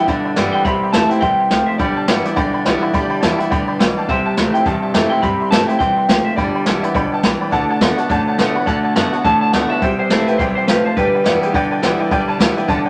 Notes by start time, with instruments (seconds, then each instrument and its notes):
0.07 clean electric guitar G2 D3 E5, upright bass B2, steel-string acoustic guitar D3, honky-tonk piano D5 G5 B5, kick, closed hi-hat
0.24 honky-tonk piano D5 G5 B5, muted upright bass stroke
0.36 clean electric guitar G2 E3, upright bass G2, steel-string acoustic guitar G3 B3 E4, honky-tonk piano D5 G5 B5, snare, closed hi-hat
0.53 honky-tonk piano D5 G5 B5, clean electric guitar G5, muted upright bass stroke
0.64 upright bass C2, steel-string acoustic guitar C3, clean electric guitar C3 G3 B5, honky-tonk piano E5 G5 C6, kick, closed hi-hat
0.83 honky-tonk piano E5 G5 C6, muted upright bass stroke
0.93 upright bass E2, clean electric guitar C3 A3 A5, steel-string acoustic guitar E3 A3 C4 E4, honky-tonk piano E5 A5, snare, closed hi-hat
1.09 steel-string acoustic guitar C4 E4, honky-tonk piano E5 G5 C6, clean electric guitar G5, muted upright bass stroke, closed hi-hat
1.21 upright bass D2, clean electric guitar C3 G3 G5, steel-string acoustic guitar E3, honky-tonk piano E5 G5 C6, kick, closed hi-hat
1.39 honky-tonk piano E5 G5 C6, muted upright bass stroke
1.49 upright bass C2, clean electric guitar C3 A3, steel-string acoustic guitar F3, honky-tonk piano E5 G5 C6, snare, closed hi-hat
1.66 clean electric guitar E5, honky-tonk piano E5 G5 C6, muted upright bass stroke
1.78 upright bass B1, clean electric guitar G2 D3 D5, steel-string acoustic guitar G3, honky-tonk piano D5 G5 B5, kick, closed hi-hat
1.96 honky-tonk piano D5 G5 A5, muted upright bass stroke
2.08 upright bass G1, clean electric guitar G2 E3, steel-string acoustic guitar G3 B3 E4, honky-tonk piano D5 G5 B5, snare, closed hi-hat
2.24 steel-string acoustic guitar B3 E4, honky-tonk piano D5 G5 D6, muted upright bass stroke, closed hi-hat
2.36 upright bass B1, clean electric guitar G2 D3, steel-string acoustic guitar D3, honky-tonk piano D5 G5 B5, kick, closed hi-hat
2.53 honky-tonk piano D5 G5 B5, muted upright bass stroke
2.65 upright bass C2, clean electric guitar G2 E3, steel-string acoustic guitar G3 B3 E4, honky-tonk piano D5 G5 B5, snare, closed hi-hat
2.81 steel-string acoustic guitar B3 E4, honky-tonk piano D5 G5 B5, muted upright bass stroke
2.93 upright bass D2, clean electric guitar G2 D3, steel-string acoustic guitar G3, honky-tonk piano D5 G5 B5, kick, closed hi-hat
3.10 honky-tonk piano D5 G5 B5, muted upright bass stroke
3.20 upright bass E2, clean electric guitar G2 E3, steel-string acoustic guitar G3 B3, honky-tonk piano D5 G5 A5, snare, closed hi-hat
3.25 steel-string acoustic guitar E4
3.38 steel-string acoustic guitar B3 E4, honky-tonk piano D5 G5 B5, muted upright bass stroke, closed hi-hat
3.50 upright bass D2, clean electric guitar G2 D3, steel-string acoustic guitar E3, honky-tonk piano D5 G5 B5, kick, closed hi-hat
3.67 honky-tonk piano D5 G5 B5, muted upright bass stroke
3.79 upright bass B1, clean electric guitar G2 E3, steel-string acoustic guitar B2, honky-tonk piano D5 G5 B5, snare, closed hi-hat
3.97 honky-tonk piano D5 F5 G5 A5, muted upright bass stroke
4.08 upright bass C2, clean electric guitar C3 G3 E5, steel-string acoustic guitar C3, honky-tonk piano E5 G5 C6, kick, closed hi-hat
4.25 honky-tonk piano E5 G5 A5, muted upright bass stroke
4.37 upright bass D2, clean electric guitar C3 A3, steel-string acoustic guitar E3 A3 C4 E4, honky-tonk piano E5 B5, snare, closed hi-hat
4.54 steel-string acoustic guitar C4 E4, honky-tonk piano E5 G5 C6, clean electric guitar G5, muted upright bass stroke, closed hi-hat
4.65 upright bass E2, steel-string acoustic guitar G2, clean electric guitar C3 G3 E5, honky-tonk piano E5 G5 A5, kick, closed hi-hat
4.82 honky-tonk piano E5 G5 A5, muted upright bass stroke
4.94 upright bass F2, clean electric guitar C3 A3, steel-string acoustic guitar E3 A3 C4 E4, honky-tonk piano E5 G5 D6, snare, closed hi-hat
5.10 steel-string acoustic guitar C4 E4, honky-tonk piano E5 G5 C6, clean electric guitar G5, muted upright bass stroke
5.22 upright bass G2, clean electric guitar C3 G3 B5, steel-string acoustic guitar C3, honky-tonk piano E5 G5 C6, kick, closed hi-hat
5.40 honky-tonk piano E5 G5 C6, muted upright bass stroke
5.51 upright bass G1, clean electric guitar C3 A3 A5, steel-string acoustic guitar E3 A3 C4 E4, honky-tonk piano E5 G5 D6, snare, closed hi-hat
5.67 steel-string acoustic guitar C4 E4, honky-tonk piano E5 G5 C6, clean electric guitar G5, muted upright bass stroke, closed hi-hat
5.79 upright bass A1, clean electric guitar C3 G3 G5, steel-string acoustic guitar E3, honky-tonk piano E5 G5 C6, kick, closed hi-hat
5.96 honky-tonk piano E5 G5 C6, muted upright bass stroke
6.08 upright bass C2, clean electric guitar C3 A3, steel-string acoustic guitar F3, honky-tonk piano E5 G5 C6, snare, closed hi-hat
6.24 clean electric guitar E5, honky-tonk piano E5 G5 C6, muted upright bass stroke
6.36 upright bass G1, clean electric guitar G2 D3 D5, steel-string acoustic guitar G3, honky-tonk piano D5 G5 B5, kick, closed hi-hat
6.54 honky-tonk piano D5 G5 B5, muted upright bass stroke
6.66 upright bass A1, clean electric guitar G2 E3, steel-string acoustic guitar G3 B3 E4, honky-tonk piano D5 G5 A5, snare, closed hi-hat
6.83 steel-string acoustic guitar B3 E4, honky-tonk piano D5 G5 B5, muted upright bass stroke, closed hi-hat
6.94 upright bass B1, clean electric guitar G2 D3, steel-string acoustic guitar B2, honky-tonk piano D5 G5 B5, kick, closed hi-hat
7.12 honky-tonk piano D5 G5 A5, muted upright bass stroke
7.23 upright bass C2, clean electric guitar G2 E3, steel-string acoustic guitar E3, honky-tonk piano D5 G5 B5, snare, closed hi-hat
7.40 honky-tonk piano D5 G5 B5, muted upright bass stroke
7.51 upright bass D2, clean electric guitar D3 A3, steel-string acoustic guitar D3, honky-tonk piano D5 F#5 A5, kick, closed hi-hat
7.69 honky-tonk piano D5 F#5 A5, muted upright bass stroke
7.81 upright bass E2, clean electric guitar D3 B3, steel-string acoustic guitar D3 A3 B3 F#4, honky-tonk piano D5 F#5 B5, snare, closed hi-hat
7.97 steel-string acoustic guitar B3 F#4, honky-tonk piano D5 F#5 A5, muted upright bass stroke, closed hi-hat
8.09 upright bass F#2, steel-string acoustic guitar A2, clean electric guitar D3 A3, honky-tonk piano D5 F#5 A5, kick, closed hi-hat
8.26 honky-tonk piano D5 F#5 A5, muted upright bass stroke
8.38 upright bass B2, steel-string acoustic guitar D3 A3 B3 F#4, clean electric guitar D3 B3, honky-tonk piano D5 F#5 A5, snare, closed hi-hat
8.55 steel-string acoustic guitar B3 F#4, honky-tonk piano D5 F#5 B5, muted upright bass stroke
8.65 upright bass A2, clean electric guitar D3 A3 F#5, steel-string acoustic guitar D3, honky-tonk piano D5 F#5 A5, kick, closed hi-hat
8.83 honky-tonk piano D5 F#5 A5, muted upright bass stroke
8.96 upright bass F#2, steel-string acoustic guitar D3 A3 B3 F#4, clean electric guitar D3 B3 F#5, honky-tonk piano D5 F#5 A5, snare, closed hi-hat
9.13 steel-string acoustic guitar B3 F#4, honky-tonk piano D5 F#5 A5, muted upright bass stroke, closed hi-hat
9.24 upright bass E2, steel-string acoustic guitar A2, clean electric guitar D3 A3 A5, honky-tonk piano D5 F#5 A5, kick, closed hi-hat
9.41 honky-tonk piano D5 F#5 A5, clean electric guitar A5, muted upright bass stroke
9.52 upright bass D2, clean electric guitar D3 B3 F#5, steel-string acoustic guitar D3 A3 B3 F#4, honky-tonk piano D5 F#5 A5, snare, closed hi-hat
9.70 steel-string acoustic guitar B3 F#4, honky-tonk piano D5 F#5 A5, clean electric guitar E5, muted upright bass stroke
9.82 upright bass C2, clean electric guitar C3 G3, steel-string acoustic guitar C3, honky-tonk piano C5 E5 G5, kick, closed hi-hat
9.98 honky-tonk piano C5 E5 G5, clean electric guitar C5, muted upright bass stroke
10.10 upright bass A1, clean electric guitar C3 A3 C5, steel-string acoustic guitar E3 A3 C4 E4, honky-tonk piano C5 E5 A5, snare, closed hi-hat
10.27 clean electric guitar B4, honky-tonk piano C5 E5 G5, muted upright bass stroke, closed hi-hat
10.38 upright bass B1, clean electric guitar C3 G3 C5, steel-string acoustic guitar E3, honky-tonk piano C5 E5 G5, kick, closed hi-hat
10.55 clean electric guitar C5, honky-tonk piano C5 E5 G5, muted upright bass stroke
10.67 upright bass A1, clean electric guitar C3 A3 B4, steel-string acoustic guitar F3, honky-tonk piano C5 E5 G5, snare, closed hi-hat
10.84 clean electric guitar C5, honky-tonk piano C5 E5 A5, muted upright bass stroke
10.96 upright bass G1, clean electric guitar G2 D3 B4, steel-string acoustic guitar G3, honky-tonk piano B4 D5 G5, kick, closed hi-hat
11.14 honky-tonk piano B4 D5 G5, muted upright bass stroke
11.24 upright bass F1, clean electric guitar G2 E3, steel-string acoustic guitar G3 B3 E4, honky-tonk piano B4 D5 G5, snare, closed hi-hat
11.42 honky-tonk piano B4 D5 G5, muted upright bass stroke, closed hi-hat
11.53 upright bass G1, clean electric guitar G2 D3, steel-string acoustic guitar D3, honky-tonk piano B4 D5 G5, kick, closed hi-hat
11.71 honky-tonk piano B4 D5 G5, muted upright bass stroke
11.82 upright bass A1, clean electric guitar G2 E3, steel-string acoustic guitar G3 B3 E4, honky-tonk piano B4 D5 G5, snare, closed hi-hat
12.00 steel-string acoustic guitar B3 E4, honky-tonk piano B4 D5 G5, muted upright bass stroke
12.11 upright bass B1, clean electric guitar G2 D3, steel-string acoustic guitar G3, honky-tonk piano B4 D5 G5, kick, closed hi-hat
12.28 honky-tonk piano B4 D5 A5, muted upright bass stroke
12.39 upright bass D2, clean electric guitar G2 E3, steel-string acoustic guitar G3 B3 E4, honky-tonk piano B4 D5 G5, snare, closed hi-hat
12.57 steel-string acoustic guitar B3 E4, honky-tonk piano B4 D5 G5, muted upright bass stroke, closed hi-hat
12.67 upright bass E2, clean electric guitar G2 D3, steel-string acoustic guitar D3, honky-tonk piano B4 D5 A5, kick, closed hi-hat
12.84 honky-tonk piano B4 D5 G5, muted upright bass stroke